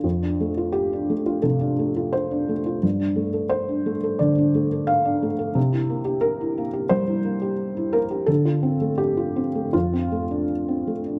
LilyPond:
\new Staff \with { instrumentName = "Felt piano" } { \time 4/4 \key f \major \tempo 4 = 87 << { r4 g'4 a'4 c''4 | r4 c''4 d''4 f''4 | r4 bes'4 c''4. bes'8 | a'4 g'4 f'4 r4 | } \\ { f,16 d'16 a16 f'8 d'16 a16 f'16 c16 d'16 a16 f'8 d'16 a16 f'16 | g,16 d'16 a16 a'8 d'16 a16 a'16 d16 d'16 a16 a'8 d'16 a16 a'16 | c16 e'16 bes16 g'8 e'16 bes16 g'16 g16 e'16 bes16 g'8 e'16 bes16 g'16 | d16 f'16 c'16 a8 f'16 c'16 a16 f,16 c'16 a16 d'8 c'16 a16 d'16 | } >> }